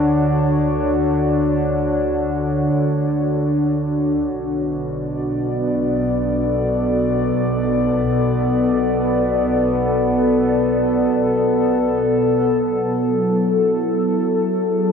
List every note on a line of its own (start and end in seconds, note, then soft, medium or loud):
0.00 4.31 D2 medium
0.00 4.36 D3 medium
0.00 6.47 D4 medium
0.00 7.68 F#4 medium
0.00 4.37 C#5 medium
4.36 12.58 B1 medium
4.36 12.64 B2 medium
4.83 12.64 D5 medium
5.31 14.92 B3 medium
6.18 14.92 A4 medium
12.63 14.92 F#3 medium
13.07 14.92 E4 medium
14.44 14.92 G#4 medium